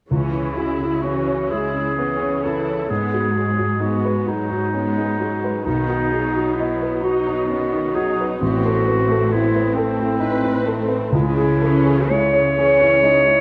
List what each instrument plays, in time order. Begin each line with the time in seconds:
0.09 grand piano C#2, cello section C#3, viola section E3 C#4, clarinet E4
0.33 grand piano E4
0.56 viola section G#3 E4, grand piano F#4
0.82 grand piano E4
1.02 viola section E3 C#4, grand piano C#4, clarinet F#4
1.28 grand piano C#5
1.50 cello section C#3, viola section G#3 E4, grand piano E4, clarinet G#4
1.74 grand piano C#4
1.97 viola section E3 C#4, grand piano B3
2.22 grand piano C#4
2.43 viola section E3 E4, grand piano E4, clarinet A4
2.69 grand piano C#5
2.89 cello section G#2, grand piano G#2, viola section G#3 B3, clarinet G#4
3.14 grand piano F#4
3.35 viola section F#3 G#3, grand piano G#4
3.58 grand piano F#4
3.80 viola section G#3 B3, grand piano D#4, clarinet F#4
4.05 grand piano B4
4.26 cello section G#2, viola section F#3 G#3, clarinet D#4, grand piano F#4
4.51 grand piano D#4
4.74 viola section G#3 B3, grand piano C#4
4.97 grand piano D#4
5.20 viola section F#3 G#3, grand piano F#4
5.44 grand piano B4
5.64 grand piano B1, cello section B2, viola section D#3 B3, clarinet D#4
5.89 grand piano F#4
6.12 viola section F#3 D#4, grand piano G#4
6.36 grand piano F#4
6.54 clarinet E4
6.59 viola section F#3 B3, grand piano D#5
6.82 grand piano B4
7.03 cello section B2, viola section F#3 D#4, clarinet F#4, grand piano F#4
7.28 grand piano D#4
7.50 viola section D#3 B3, grand piano C#4
7.73 grand piano D#4
7.95 viola section F#3 D#4, grand piano F#4, clarinet G#4
8.21 grand piano B4
8.40 grand piano A1, cello section A2, viola section B3 C4, clarinet F#4
8.65 grand piano A4
8.86 viola section A3 C4, grand piano B4
9.10 grand piano A4
9.31 viola section B3 C4, clarinet E4, grand piano E4
9.55 grand piano B4
9.74 cello section A2, viola section A3 C4, clarinet C4, grand piano A4
10.00 grand piano E4
10.20 viola section C4 B4, grand piano D#4
10.44 grand piano E4
10.65 viola section A3 C4, grand piano A4
10.88 grand piano B4
11.11 grand piano C#2, cello section C#3, viola section G#3, clarinet E4
11.37 grand piano G#4
11.61 viola section E3 C#4, grand piano A4
11.86 grand piano G#4
12.09 viola section G#3, grand piano E4, clarinet C#5
12.33 grand piano C#5
12.54 cello section C#3, viola section E3 C#4
12.59 grand piano G#4
12.81 grand piano E4
13.02 viola section G#3, grand piano D#4
13.27 grand piano E4